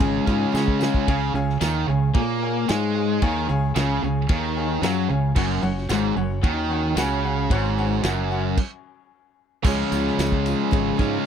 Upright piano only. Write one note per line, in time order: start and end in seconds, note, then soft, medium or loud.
0.01 0.23 G#4 medium
0.01 0.23 C#5 medium
0.01 0.23 F5 medium
0.01 0.23 G#5 medium
0.29 0.49 G#4 medium
0.29 0.49 C#5 medium
0.29 0.49 F5 medium
0.29 0.50 G#5 medium
0.55 0.76 G#4 loud
0.55 0.76 C#5 medium
0.55 0.76 F5 medium
0.55 0.76 G#5 loud
0.82 1.03 G#4 medium
0.82 1.03 C#5 medium
0.82 1.03 F5 medium
0.82 1.03 G#5 medium
1.08 1.29 G#4 loud
1.08 1.30 C#5 loud
1.08 1.30 F5 loud
1.08 1.30 G#5 loud
1.35 1.56 G#4 loud
1.35 1.56 C#5 loud
1.35 1.56 F5 loud
1.35 1.56 G#5 loud
1.61 1.83 G#4 medium
1.61 1.83 C#5 medium
1.61 1.83 F5 medium
1.61 1.83 G#5 medium
1.89 2.10 G#4 medium
1.89 2.10 C#5 medium
1.89 2.10 F5 medium
1.89 2.10 G#5 loud
2.15 2.36 G#4 medium
2.15 2.37 C#5 medium
2.15 2.37 F5 medium
2.15 2.37 G#5 loud
2.43 2.64 G#4 medium
2.43 2.64 C#5 medium
2.43 2.64 F5 medium
2.43 2.64 G#5 medium
2.69 2.90 G#4 loud
2.69 2.90 C#5 medium
2.69 2.90 F5 medium
2.69 2.90 G#5 loud
2.95 3.16 G#4 medium
2.95 3.16 C#5 medium
2.95 3.17 F5 medium
2.95 3.17 G#5 medium
3.22 3.43 G#4 loud
3.22 3.44 C#5 loud
3.22 3.44 F5 loud
3.22 3.44 G#5 loud
3.49 3.70 G#4 loud
3.49 3.70 C#5 loud
3.49 3.70 F5 loud
3.49 3.71 G#5 loud
3.76 3.97 G#4 medium
3.76 3.97 C#5 medium
3.76 3.97 F5 medium
3.76 3.97 G#5 loud
4.03 4.24 G#4 medium
4.03 4.25 C#5 medium
4.03 4.24 F5 medium
4.03 4.25 G#5 loud
4.30 4.51 G#4 medium
4.30 4.51 C#5 medium
4.30 4.51 F5 medium
4.30 4.51 G#5 medium
4.57 4.78 G#4 medium
4.57 4.78 C#5 medium
4.57 4.78 F5 medium
4.57 4.78 G#5 loud
4.83 5.04 G#4 loud
4.83 5.05 C#5 loud
4.83 5.05 F5 loud
4.83 5.05 A#5 loud
5.10 5.31 G#4 medium
5.10 5.31 C#5 medium
5.10 5.31 F5 medium
5.10 5.31 G#5 medium
5.36 5.58 C#4 loud
5.36 5.58 F#4 loud
5.36 5.58 C#5 loud
5.36 5.58 F#5 loud
5.62 5.84 C#4 loud
5.62 5.84 F#4 loud
5.62 5.84 C#5 loud
5.62 5.84 F#5 loud
5.89 6.11 C#4 medium
5.89 6.11 F#4 medium
5.89 6.11 C#5 medium
5.89 6.11 F#5 medium
6.16 6.38 C#4 medium
6.16 6.38 F#4 medium
6.16 6.38 C#5 medium
6.16 6.38 F#5 loud
6.42 6.65 C#4 medium
6.42 6.64 F#4 medium
6.42 6.65 C#5 medium
6.42 6.65 F#5 medium
6.71 6.92 C#4 medium
6.71 6.92 F#4 medium
6.71 6.92 C#5 medium
6.71 6.92 F#5 medium
6.98 7.19 C#4 loud
6.98 7.19 F#4 loud
6.98 7.19 C#5 medium
6.98 7.19 F#5 loud
7.25 7.46 C#4 medium
7.25 7.46 F#4 medium
7.25 7.46 C#5 medium
7.25 7.46 F#5 loud
7.51 7.73 C#4 loud
7.51 7.72 F#4 loud
7.51 7.73 C#5 loud
7.51 7.73 F#5 loud
7.78 7.99 C#4 loud
7.78 7.99 F#4 loud
7.78 7.99 C#5 loud
7.78 8.00 F#5 loud
8.05 8.26 C#4 medium
8.05 8.26 F#4 medium
8.05 8.27 C#5 medium
8.05 8.27 F#5 medium
8.31 8.53 C#4 medium
8.31 8.53 F#4 medium
8.31 8.53 C#5 medium
8.31 8.53 F#5 loud